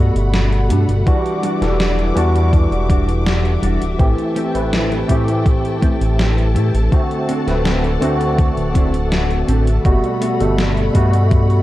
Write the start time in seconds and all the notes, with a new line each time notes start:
Already playing: G2 B2 G3 A3 B3 F#4 A4 F#5 B5
0.15 G1, closed hi-hat
0.34 snare, closed hi-hat
0.52 closed hi-hat
0.69 G2 A3 B3 D4, closed hi-hat
0.89 G1, closed hi-hat
1.06 E3 G3 D4 F#4 E5 D6, kick, closed hi-hat
1.26 closed hi-hat
1.42 G3 D4 F#4, closed hi-hat
1.61 E1 E3 G3 D4 A4, snare, closed hi-hat
1.80 snare, closed hi-hat
1.99 closed hi-hat
2.15 E2 E3 G3 D4 F#4, closed hi-hat
2.36 closed hi-hat
2.53 kick, closed hi-hat
2.71 E1, closed hi-hat
2.89 G3 D4 F#4, kick, closed hi-hat
3.09 closed hi-hat
3.27 snare, closed hi-hat
3.45 closed hi-hat
3.62 E1 G3 D4 F#4, closed hi-hat
3.81 D1, closed hi-hat
3.99 A1 E3 A3 C4 G4 A4 G5 A5, kick, closed hi-hat
4.18 closed hi-hat
4.35 A3 C4 G4, closed hi-hat
4.54 A1 E3 A3 C4 B4, closed hi-hat
4.73 snare, closed hi-hat
4.92 closed hi-hat
5.08 A2 E3 A3 C4 E4 G4, kick, closed hi-hat
5.28 closed hi-hat
5.46 kick, closed hi-hat
5.65 closed hi-hat
5.81 A3 C4 G4, kick, closed hi-hat
6.01 A1, closed hi-hat
6.19 snare, closed hi-hat
6.38 closed hi-hat
6.55 A2 A3 C4 E4, closed hi-hat
6.74 A1, closed hi-hat
6.91 D3 A3 C4 F#4 D5 F#5, kick, closed hi-hat
7.11 closed hi-hat
7.28 C4 D4 F#4, closed hi-hat
7.47 D1 D3 A3 C4 B4, snare, closed hi-hat
7.65 snare, closed hi-hat
7.84 closed hi-hat
8.00 D2 D3 A3 C4 D4 F#4, closed hi-hat
8.21 closed hi-hat
8.39 kick, closed hi-hat
8.57 D1, closed hi-hat
8.74 C4 D4 E4, kick, closed hi-hat
8.94 closed hi-hat
9.12 F#5, snare, closed hi-hat
9.31 closed hi-hat
9.48 A1 C4 D4 F#4 E5, closed hi-hat
9.67 closed hi-hat
9.84 G1 B2 G3 A3 F#4 F#5 B5, kick, closed hi-hat
10.04 closed hi-hat
10.21 A3 B3 F#4, closed hi-hat
10.40 G1 B2 G3 A3 A4, closed hi-hat
10.58 snare, closed hi-hat
10.77 closed hi-hat
10.93 G2 B2 G3 A3 B3 F#4, kick, closed hi-hat
11.13 closed hi-hat
11.31 kick, closed hi-hat
11.50 closed hi-hat